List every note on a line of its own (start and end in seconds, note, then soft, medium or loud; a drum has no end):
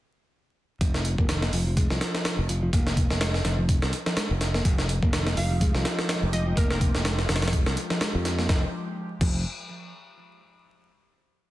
0.81 1.15 F1 medium
0.81 1.17 F3 medium
0.81 kick loud
0.81 closed hi-hat medium
0.94 snare soft
1.05 closed hi-hat medium
1.18 1.50 F1 medium
1.18 1.28 A#3 medium
1.18 kick medium
1.29 1.41 D#3 medium
1.29 snare loud
1.29 closed hi-hat medium
1.42 1.52 A#3 medium
1.42 snare soft
1.53 1.87 F1 medium
1.53 1.63 F3 medium
1.53 open hi-hat medium
1.66 1.76 F3 medium
1.77 1.89 G#3 medium
1.77 kick loud
1.77 closed hi-hat medium
1.90 1.99 C2 medium
1.90 2.37 F3 medium
1.90 snare soft
2.01 snare medium
2.01 closed hi-hat medium
2.15 snare soft
2.25 snare loud
2.25 closed hi-hat medium
2.38 2.70 F1 medium
2.49 2.62 F3 medium
2.49 closed hi-hat medium
2.62 2.70 F3 medium
2.73 3.07 F1 medium
2.73 3.20 A#3 medium
2.73 kick loud
2.73 closed hi-hat medium
2.87 snare soft
2.97 kick medium
2.97 closed hi-hat medium
3.10 3.42 F1 loud
3.10 snare soft
3.21 3.31 G#3 medium
3.21 snare loud
3.21 closed hi-hat medium
3.34 snare soft
3.45 3.79 F1 medium
3.45 3.58 F3 loud
3.45 snare soft
3.45 closed hi-hat medium
3.58 3.66 F3 medium
3.69 kick loud
3.69 closed hi-hat medium
3.82 3.91 C2 medium
3.82 snare soft
3.93 closed hi-hat medium
4.06 4.14 F3 medium
4.06 snare soft
4.17 4.27 G#3 medium
4.17 snare loud
4.17 closed hi-hat medium
4.31 4.62 F1 medium
4.41 snare soft
4.41 closed hi-hat medium
4.54 4.64 A#3 medium
4.54 snare soft
4.65 4.99 F1 medium
4.65 5.01 F3 medium
4.65 8.45 F3 medium
4.65 8.45 G#3 medium
4.65 6.55 D#4 medium
4.65 8.45 G4 medium
4.65 kick loud
4.65 closed hi-hat medium
4.78 snare soft
4.89 closed hi-hat medium
5.02 5.34 F1 loud
5.02 5.12 A#3 medium
5.02 kick medium
5.13 5.25 D#3 medium
5.13 snare loud
5.13 closed hi-hat medium
5.27 5.36 A#3 medium
5.27 snare soft
5.37 5.71 F1 medium
5.37 5.47 F3 medium
5.37 5.83 F5 medium
5.37 open hi-hat medium
5.51 5.60 F3 medium
5.61 5.73 G#3 medium
5.61 kick loud
5.61 closed hi-hat medium
5.74 5.83 C2 medium
5.74 6.21 F3 loud
5.74 snare soft
5.85 snare medium
5.85 closed hi-hat medium
5.99 snare soft
6.09 snare loud
6.09 closed hi-hat medium
6.23 6.54 F1 medium
6.33 6.46 F3 loud
6.33 6.54 D#5 medium
6.33 closed hi-hat medium
6.46 6.54 F3 loud
6.57 6.91 F1 medium
6.57 7.04 A#3 medium
6.57 8.47 F4 medium
6.57 6.66 A#4 medium
6.57 kick loud
6.57 closed hi-hat medium
6.70 6.77 A#4 medium
6.70 snare soft
6.81 kick medium
6.81 closed hi-hat medium
6.95 7.26 F1 loud
6.95 snare soft
7.05 7.15 G#3 medium
7.05 snare loud
7.05 closed hi-hat medium
7.19 snare soft
7.29 7.63 F1 medium
7.29 7.42 F3 loud
7.29 snare medium
7.29 closed hi-hat medium
7.36 snare medium
7.36 closed hi-hat medium
7.42 7.50 F3 loud
7.42 snare medium
7.42 closed hi-hat medium
7.48 snare medium
7.48 closed hi-hat medium
7.53 kick loud
7.53 closed hi-hat medium
7.66 7.75 C2 medium
7.66 snare soft
7.77 closed hi-hat medium
7.90 7.98 F3 medium
7.90 snare soft
8.01 8.11 G#3 medium
8.01 snare loud
8.01 closed hi-hat medium
8.15 8.46 F2 medium
8.25 snare soft
8.25 closed hi-hat medium
8.38 8.48 A#3 medium
8.38 snare soft
8.49 8.63 F1 medium
8.49 8.63 F3 medium
8.49 kick loud
8.49 snare medium
9.21 9.43 F1 medium
9.21 9.43 F3 medium
9.21 kick loud
9.21 crash medium